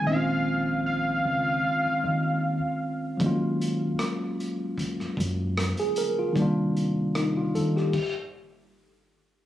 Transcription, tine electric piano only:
X:1
M:4/4
L:1/16
Q:"Swing 16ths" 1/4=76
K:Ebmix
V:1 name="Tine electric piano"
z16 | z12 z A B F- | F z3 E F =A G2 z6 z |]
V:2 name="Tine electric piano"
[E,A,CDEF]16 | [F,_G,A,B,DF]16 | [E,G,B,=DF]8 z8 |]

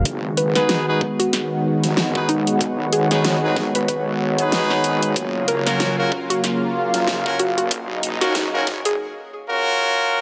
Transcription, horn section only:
X:1
M:4/4
L:1/16
Q:"Swing 16ths" 1/4=94
K:G#dor
V:1 name="Horn section"
z3 [DFGB]2 [DFGB] z6 z [DFGB] z2 | z3 [DFGB] z [DFGB] z4 z [DFGB]4- [DFGB] | z3 [CEFA]2 [CEFA] z6 z [CEFA] z2 | z3 [CEFA] z [CEFA] z4 z [CEFA]4- [CEFA] |]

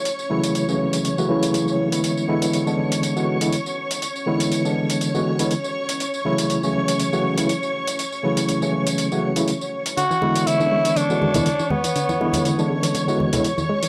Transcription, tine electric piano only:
X:1
M:4/4
L:1/16
Q:"Swing 16ths" 1/4=121
K:Emix
V:1 name="Tine electric piano" clef=bass
z2 [C,E,F,A,E]3 [C,E,F,A,C]4 [C,E,F,A,F] [C,E,F,A,E]4- [C,E,F,A,E] [D,E,G,B,E]- | [D,E,G,B,E]2 [D,E,G,B,E]3 [D,E,G,B,D]4 [D,E,G,B,F]2 [D,E,G,B,E] z4 | z2 [D,E,G,B,E]3 [D,E,G,B,D]4 [D,E,G,B,F]2 [D,E,G,B,E] z4 | z2 [C,E,F,A,E]3 [C,E,F,A,C]4 [C,E,F,A,F]2 [C,E,F,A,E] z4 |
z2 [C,E,F,A,E]3 [C,E,F,A,C]4 [C,E,F,A,F]2 [C,E,F,A,E] z4 | z2 [D,E,G,B,E]3 [D,E,G,B,D]4 [D,E,G,B,F]2 [D,E,G,B,E] z4 | z2 [D,E,G,B,E]3 [D,E,G,B,D]4 [D,E,G,B,F]2 [D,E,G,B,E] z4 |]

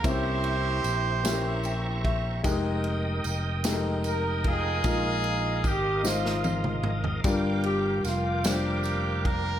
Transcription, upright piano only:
X:1
M:6/8
L:1/8
Q:3/8=50
K:Cm
V:1 name="Upright piano"
[B,_D=Ec]2 z [B,DEG]2 z | [A,EGB]2 z [A,EG=AB]2 z | [A,EFB]2 z [A,EFc]2 z | [G,DFB]2 z [G,DFc]2 z |]
V:2 name="Upright piano" clef=bass
C,3 z g =e | z6 | B,,3 z3 | G,,3 z3 |]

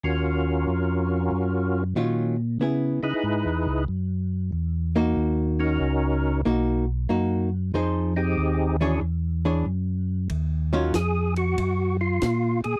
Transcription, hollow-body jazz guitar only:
X:1
M:4/4
L:1/8
Q:"Swing" 1/4=94
K:Ebm
V:1 name="Hollow-body jazz guitar"
z6 [E,G,DF] z | [C_FA] z6 [B,EG]- | [B,EG]2 z2 [^A,^D^F] z [A,DF] z | [F,EA=c] z2 [_F,=DA_d] z [=E,=D^G^c] z2 |
z [E,G,DF] z6 |]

